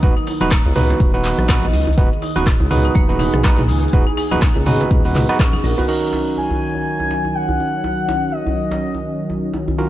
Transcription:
Already playing: D#3 F#3
0.03 D#1 B3 D#4 F#4 B4, kick, closed hi-hat, muted conga, djembe tone, shaker
0.17 D#4, shaker
0.27 D#4, open hi-hat, djembe slap, djembe tone, shaker
0.40 D#1 B3 D#4 F#4 B4, closed hi-hat, muted conga, high conga, shaker
0.51 A#3, kick, cross-stick, clap, closed hi-hat, shaker
0.65 C#2, djembe tone, djembe bass, shaker
0.75 C#2 B3 D#4 F#4 B4 D#5, mid tom, open hi-hat, muted conga, low conga, shaker
0.89 closed hi-hat, djembe slap, djembe tone, shaker
1.00 D#1, kick, closed hi-hat, shaker
1.14 B3 D#4 F#4 B4, muted conga, djembe tone, shaker
1.25 clap, open hi-hat, shaker
1.38 A#1, cross-stick, closed hi-hat, high conga, shaker
1.48 B3 D#4 F#4 B4, kick, cross-stick, clap, closed hi-hat, high conga, djembe tone, low conga, shaker
1.62 D#5, muted conga, high conga, low conga, shaker
1.73 C#2 D#5, open hi-hat, high conga, djembe tone, shaker
1.87 closed hi-hat, djembe bass, shaker
1.93 closed hi-hat
1.97 D#1 B3 D#4 F#4 G#4 B4, kick, closed hi-hat, muted conga, djembe tone, low conga, shaker
2.12 shaker
2.22 D#4, open hi-hat, djembe slap, shaker
2.36 D#1 B3 D#4 F#4 B4, closed hi-hat, muted conga, high conga, djembe tone, shaker
2.47 kick, cross-stick, clap, closed hi-hat, shaker
2.60 C#2, djembe tone, djembe bass, shaker
2.71 C#2 B3 D#4 F#4 B4, mid tom, open hi-hat, muted conga, low conga, shaker
2.85 D#4, closed hi-hat, djembe tone, shaker
2.95 D#1 A#3, kick, closed hi-hat, high conga, shaker
3.09 B3 D#4 F#4 B4, muted conga, high conga, shaker
3.19 D#4, open hi-hat, djembe slap, djembe tone, low conga, shaker
3.34 A#1, cross-stick, closed hi-hat, mid tom, shaker
3.44 A#3 B3 D#4 F#4 B4, kick, cross-stick, clap, closed hi-hat, djembe tone, high conga, shaker
3.58 mid tom, muted conga, djembe bass, shaker
3.68 C#2 D#4, open hi-hat, djembe tone, high conga, shaker
3.83 closed hi-hat, shaker
3.88 closed hi-hat
3.93 D#1 B3 D#4 F#4 B4, kick, closed hi-hat, muted conga, shaker
4.07 D#4, djembe tone, shaker
4.17 D#4, open hi-hat, djembe slap, shaker
4.31 D#1 B3 D#4 F#4 B4, closed hi-hat, muted conga, djembe tone, high conga, shaker
4.42 A#3, kick, cross-stick, clap, closed hi-hat, shaker
4.56 C#2, djembe tone, djembe bass, shaker
4.66 C#2 B3 D#4 F#4 B4 D#5, mid tom, open hi-hat, muted conga, low conga, shaker
4.80 closed hi-hat, djembe slap, shaker
4.91 D#1, kick, closed hi-hat, djembe tone, shaker
5.05 B3 D#4 F#4 B4, open hi-hat, muted conga, shaker
5.15 C#2, clap, mid tom, open hi-hat, djembe tone, shaker
5.29 B3 D#4 F#4 B4, cross-stick, closed hi-hat, high conga, shaker
5.39 C#4, kick, cross-stick, clap, closed hi-hat, high conga, djembe tone, low conga, shaker
5.53 D#4, muted conga, high conga, low conga, shaker
5.63 A#1 A#4, open hi-hat, high conga, shaker
5.78 B3 D#4 F#4 B4, closed hi-hat, djembe tone, djembe bass, shaker
5.83 closed hi-hat
5.88 D#3 F#3 C#4 D#4 F#4 A#4, crash, djembe tone
6.13 djembe slap, djembe tone
6.38 G#5, djembe tone
6.50 djembe bass
6.75 djembe tone
7.00 djembe tone
7.11 djembe slap
7.25 djembe tone
7.35 F#5
7.49 djembe bass
7.60 djembe tone
7.84 djembe tone
8.08 djembe slap, djembe tone
8.32 D#5
8.46 djembe tone, djembe bass
8.71 djembe slap, djembe tone
8.94 djembe tone
9.30 djembe tone
9.53 djembe tone
9.68 djembe bass
9.78 D#3 C#4 D#4 F4 F#4 A#4, djembe tone

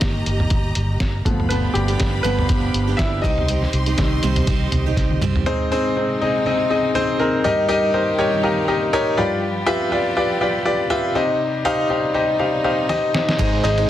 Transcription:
Already playing: D#3 G3 A#3 D#4 G4 D#5 A#5
0.01 kick, snare, closed hi-hat
0.26 G1, closed hi-hat
0.40 floor tom
0.50 G1, kick, closed hi-hat
0.75 G1, closed hi-hat
1.00 G1, kick, snare, closed hi-hat
1.25 G1 F3 A3 B3 G4 F5 B5, kick, closed hi-hat
1.40 floor tom
1.49 F3 B3 D4 G4 B4, closed hi-hat
1.74 G1 G3 G4, closed hi-hat
1.88 F3 B3 D4 G4, closed hi-hat
2.00 G1, kick, snare, closed hi-hat
2.23 G1 G2 D3 F3 B3 D4 G4 B4, closed hi-hat
2.39 floor tom
2.49 G1 F3 B3 D4 G4, kick, closed hi-hat
2.74 G1, closed hi-hat
2.87 F3 B3 D4 G4
2.97 E4 E5, kick, snare, closed hi-hat
3.21 C2 G3 C4 D#4 D#5 C6, kick, closed hi-hat
3.25 G4
3.38 floor tom
3.48 G3 C4 D#4 G4, closed hi-hat
3.62 snare
3.73 C2, closed hi-hat
3.86 C4 D#4 G4, closed hi-hat
3.97 C2 D#3 G3 C4, kick, snare, closed hi-hat
4.23 C2 C3 G3 C4 D#4 G4, closed hi-hat
4.36 closed hi-hat, floor tom
4.47 C2 G3 C4 D#4 G4, kick, closed hi-hat
4.72 C2, closed hi-hat, floor tom
4.86 C4 D#4 G4
4.97 C2, kick, snare, closed hi-hat
5.10 high tom
5.21 C2 G3 C4 D#4 G4, closed hi-hat, mid tom
5.36 floor tom
5.46 G#2 C3 G#3 C4 D#4 G#4 C5
5.71 C4 D#4 G#4 C5
5.97 C4 D#4 G#4 C5
6.21 C4 D#4 G#4 D#5
6.46 C4 D#4 G#4 D#5
6.70 C4 D#4 G#4 D#5
6.95 C4 D#4 G#4 C5
7.19 C4 D#4 G#4 A#4
7.44 G2 D#3 A#3 D#4 G4 A#4 D#5
7.68 D#4 G4 A#4 D#5
7.94 D#4 G4 A#4 C5
8.18 D#4 G4 A#4 C#5 D#5
8.43 D#4 G4 A#4 D#5 F5
8.68 D#4 G4 A#4 D#5
8.93 D#4 G4 A#4 C#5 G5
9.17 G2 F3 B3 F4 G4 B4 D5 B5
9.66 F4 G4 B4 E5
9.92 F4 G4 B4 D5
10.17 F4 G4 B4 D5
10.41 F4 G4 B4 D5
10.65 F4 G4 B4 D5
10.90 F4 G4 B4 E5
11.15 C3 G3 D#4 G4 C5 D#5
11.65 D#4 G4 C5 F5
11.90 D#4 G4 C5 F5
12.14 D#4 G4 C5 D#5
12.39 D#4 G4 C5 F5
12.64 D#4 G4 C5 F5
12.89 D#4 G4 C5 D#5, snare
13.14 D#4 G4 C5 D#5, snare
13.29 snare
13.39 G#1 G#2 D#3 G#3 C4 D#4 G#4 C5 D#5, kick, ride
13.63 G#1 D#4 G#4 C5 D#5, ride
13.78 G#3 C4 D#4 G#4, ride

